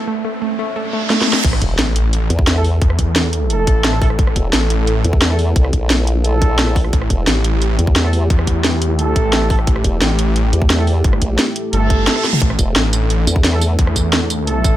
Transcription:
Already playing: riser
0.07 A3
0.25 A3
0.42 A3
0.59 A3
0.76 A3, reverse cymbal
0.93 A3
1.10 A3, snare
1.22 snare
1.27 A3
1.33 snare
1.44 A1 A3 E4 A4, kick, closed hi-hat, crash, impact
1.53 cross-stick
1.62 E1, kick, closed hi-hat
1.79 A1, snare, closed hi-hat
1.96 closed hi-hat
2.13 closed hi-hat
2.30 E2, closed hi-hat
2.39 kick
2.47 snare, closed hi-hat
2.56 A3 E4 A4, cross-stick
2.64 open hi-hat
2.82 E2, kick, closed hi-hat
2.90 cross-stick
2.99 kick, closed hi-hat
3.16 snare, closed hi-hat
3.33 closed hi-hat
3.50 A3 E4 A4, closed hi-hat
3.67 A1, kick, closed hi-hat
3.84 snare, closed hi-hat
3.93 cross-stick
4.02 A3 E4 A4, kick, open hi-hat
4.10 cross-stick
4.19 A1, kick, closed hi-hat
4.27 cross-stick
4.36 E1, kick, closed hi-hat
4.53 A1, snare, closed hi-hat
4.70 closed hi-hat
4.87 closed hi-hat
5.04 E2, closed hi-hat
5.13 kick
5.22 snare, closed hi-hat
5.30 A3 E4 A4, cross-stick
5.39 open hi-hat
5.56 C2, kick, closed hi-hat
5.64 cross-stick
5.73 A#1, kick, closed hi-hat
5.90 snare, closed hi-hat
6.07 closed hi-hat
6.24 A3 E4 A4, closed hi-hat
6.42 kick, closed hi-hat
6.59 snare, closed hi-hat
6.67 cross-stick
6.76 kick, open hi-hat
6.84 cross-stick
6.93 A1 G4, kick, closed hi-hat
7.02 cross-stick
7.10 E1, kick, closed hi-hat
7.27 A1, snare, closed hi-hat
7.44 closed hi-hat
7.62 closed hi-hat
7.79 E2, closed hi-hat
7.87 kick
7.96 snare, closed hi-hat
8.05 A3 E4 A4, cross-stick
8.13 open hi-hat
8.30 E2, kick, closed hi-hat
8.39 cross-stick
8.47 kick, closed hi-hat
8.64 snare, closed hi-hat
8.82 closed hi-hat
8.90 D#2
8.99 A3 E4 A4, closed hi-hat
9.16 A1, kick, closed hi-hat
9.33 snare, closed hi-hat
9.42 cross-stick
9.50 A3 E4 A4, kick, open hi-hat
9.59 cross-stick
9.67 A1, kick, closed hi-hat
9.76 cross-stick
9.84 E1, kick, closed hi-hat
10.02 A1, snare, closed hi-hat
10.19 closed hi-hat
10.36 closed hi-hat
10.53 E2, closed hi-hat
10.62 kick
10.70 snare, closed hi-hat
10.79 A3 E4 A4, cross-stick
10.87 open hi-hat
11.04 G1, kick, closed hi-hat
11.13 cross-stick
11.22 A#1, kick, closed hi-hat
11.39 snare, closed hi-hat
11.56 closed hi-hat
11.73 G1 A3 E4 A4, closed hi-hat, reverse cymbal
11.90 kick, closed hi-hat
12.07 snare, closed hi-hat
12.16 A3 E4 A4, cross-stick
12.24 snare, open hi-hat
12.33 mid tom
12.42 A1 D4 A4, kick, closed hi-hat
12.50 cross-stick
12.59 E1, kick, closed hi-hat, tambourine
12.76 A1, snare, closed hi-hat
12.93 closed hi-hat, tambourine
13.10 closed hi-hat
13.27 E2, closed hi-hat, tambourine
13.36 kick
13.44 snare, closed hi-hat
13.53 A3 E4 A4, cross-stick
13.62 open hi-hat, tambourine
13.79 E2, kick, closed hi-hat
13.87 cross-stick
13.96 kick, closed hi-hat, tambourine
14.13 snare, closed hi-hat
14.30 closed hi-hat, tambourine
14.47 A3 E4 A4, closed hi-hat
14.64 A1, kick, closed hi-hat, tambourine

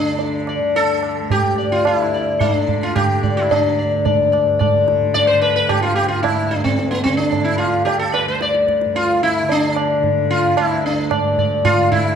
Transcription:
Already playing: D2 G2 D4
0.00 D3
0.19 tabla tin
0.47 D5, tabla na
0.60 D3
0.75 A4, tabla tin
1.03 tabla na
1.20 D2
1.30 G4, tabla tin, tabla ge
1.58 D5
1.72 F4
1.79 G2
1.85 F4, tabla na
1.98 E4
2.14 D5
2.39 D3 D#4, tabla na, tabla ge
2.56 D4
2.68 tabla ge
2.83 F4
2.95 D3 G4, tabla na, tabla ge
3.23 D5, tabla ge
3.37 E4
3.51 D4, tabla tin, tabla ge
3.58 D2
3.79 D5
4.05 D5, tabla tin, tabla ge
4.16 G2
4.32 D5, tabla na
4.59 D5, tabla na, tabla ge
4.76 D3
4.88 tabla te
5.02 tabla ge
5.14 D5, tabla tin, tabla ge
5.27 C5
5.34 D3
5.41 B4, tabla na
5.56 B4
5.69 G4, tabla na, tabla ge
5.82 F4
5.91 D2
5.95 G4
6.08 F4
6.23 E4, tabla na, tabla ge
6.51 G2 D4, tabla te
6.64 C4, tabla ge
6.79 tabla te
6.91 B3, tabla te
7.04 C4, tabla ke
7.09 D3
7.17 D4, tabla te
7.33 tabla tin, tabla ge
7.44 E4
7.58 F4, tabla na
7.68 D3
7.85 G4, tabla tin
7.99 A4
8.14 B4, tabla na
8.26 D2 C5
8.41 D5, tabla te
8.54 tabla te
8.68 tabla ke
8.81 G2, tabla te
8.95 F4, tabla tin
9.23 E4
9.43 D3
9.49 D4, tabla tin
9.76 D5, tabla na
10.00 D3, tabla tin, tabla ge
10.31 F4
10.57 D2 E4, tabla na
10.86 D4
11.11 D5, tabla na, tabla ge
11.17 G2
11.38 D5, tabla ge
11.65 F4, tabla na, tabla ge
11.75 D3
11.92 E4, tabla ge

